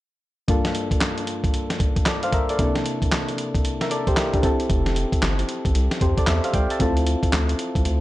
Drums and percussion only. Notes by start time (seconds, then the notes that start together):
0.48 kick, closed hi-hat
0.65 snare, closed hi-hat
0.75 closed hi-hat
0.91 kick, closed hi-hat
1.01 snare, clap, closed hi-hat
1.18 closed hi-hat
1.27 closed hi-hat
1.44 kick, closed hi-hat
1.54 closed hi-hat
1.70 snare, closed hi-hat
1.80 kick, closed hi-hat
1.96 kick, closed hi-hat
2.06 snare, clap, closed hi-hat
2.23 closed hi-hat
2.33 kick, closed hi-hat
2.49 closed hi-hat
2.59 kick, closed hi-hat
2.75 snare, closed hi-hat
2.86 closed hi-hat
3.02 kick, closed hi-hat
3.12 snare, clap, closed hi-hat
3.29 closed hi-hat
3.38 closed hi-hat
3.55 kick, closed hi-hat
3.65 closed hi-hat
3.81 snare, closed hi-hat
3.91 closed hi-hat
4.07 kick, closed hi-hat
4.17 snare, clap, closed hi-hat
4.34 kick, closed hi-hat
4.43 kick, closed hi-hat
4.60 closed hi-hat
4.70 kick, closed hi-hat
4.86 snare, closed hi-hat
4.96 closed hi-hat
5.12 kick, closed hi-hat
5.22 snare, clap, closed hi-hat
5.39 closed hi-hat
5.49 closed hi-hat
5.65 kick, closed hi-hat
5.75 closed hi-hat
5.91 snare, closed hi-hat
6.01 kick, closed hi-hat
6.17 kick, closed hi-hat
6.27 snare, clap, closed hi-hat
6.44 closed hi-hat
6.54 kick, closed hi-hat
6.70 closed hi-hat
6.80 kick, closed hi-hat
6.97 closed hi-hat
7.07 closed hi-hat
7.23 kick, closed hi-hat
7.33 snare, clap, closed hi-hat
7.49 closed hi-hat
7.59 closed hi-hat
7.75 kick, closed hi-hat
7.85 closed hi-hat